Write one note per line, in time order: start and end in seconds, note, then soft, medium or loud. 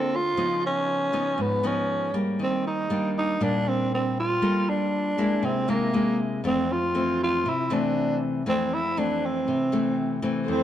0.00 0.35 D3 medium
0.00 0.19 A#3 medium
0.00 0.17 C4 medium
0.00 0.19 F4 soft
0.00 0.20 A4 medium
0.16 0.64 F4 medium
0.37 1.36 C#3 medium
0.37 1.09 F3 medium
0.37 1.09 B3 soft
0.37 1.09 D#4 medium
0.66 1.43 C#4 medium
1.13 1.59 F3 medium
1.13 1.60 B3 medium
1.13 1.60 D#4 medium
1.38 2.37 G#2 medium
1.38 1.68 B3 medium
1.63 2.10 F3 medium
1.63 2.10 B3 medium
1.63 2.16 C#4 medium
1.63 2.10 D#4 medium
2.14 2.89 G3 soft
2.14 2.89 A#3 medium
2.39 3.38 D#3 medium
2.39 2.65 C4 medium
2.67 3.13 D#4 medium
2.90 3.36 G3 soft
2.90 3.37 A#3 soft
2.90 3.37 D4 soft
3.18 3.45 D#4 medium
3.40 4.39 A#2 medium
3.40 4.38 G3 soft
3.40 4.38 A#3 soft
3.40 4.38 D4 medium
3.40 3.70 D4 medium
3.69 3.92 C4 medium
3.94 4.16 C4 medium
4.19 4.71 F4 medium
4.42 5.18 G3 medium
4.42 5.13 A#3 soft
4.42 5.14 F4 soft
4.42 5.14 A4 soft
4.69 5.46 D4 medium
5.18 5.64 G#3 soft
5.18 5.64 A#3 medium
5.18 5.64 E4 medium
5.43 6.41 C3 medium
5.43 5.72 C4 medium
5.68 5.89 G#3 medium
5.68 5.89 A#3 medium
5.68 6.19 A#3 medium
5.68 5.89 E4 medium
5.93 6.40 G#3 soft
5.93 6.40 A#3 soft
5.93 6.40 E4 medium
6.44 7.42 F2 medium
6.44 6.76 E3 soft
6.44 6.77 A3 medium
6.44 6.77 C4 medium
6.44 6.74 C4 medium
6.72 7.21 F4 medium
6.95 7.45 E3 soft
6.95 7.45 A3 soft
6.95 7.45 C4 medium
7.23 7.51 F4 medium
7.46 8.44 C3 medium
7.46 7.75 E4 medium
7.70 8.42 E3 medium
7.70 8.42 A3 medium
7.70 8.42 C4 medium
7.70 8.22 D4 medium
8.46 9.44 F2 medium
8.46 8.79 E3 medium
8.46 8.79 A3 soft
8.46 8.79 C4 medium
8.46 8.75 C4 medium
8.74 9.00 E4 medium
8.97 9.68 E3 soft
8.97 9.69 A3 soft
8.97 9.69 C4 medium
8.97 9.27 D4 medium
9.26 10.25 C4 medium
9.48 10.46 C3 medium
9.72 10.19 E3 medium
9.72 10.19 A3 medium
9.72 10.19 C4 medium
10.22 10.63 E3 medium
10.22 10.63 A3 medium
10.22 10.63 C4 medium
10.48 10.63 F2 medium
10.48 10.63 A3 medium
10.48 10.63 C4 medium
10.48 10.63 E4 medium
10.48 10.63 A4 medium
10.48 10.63 C5 medium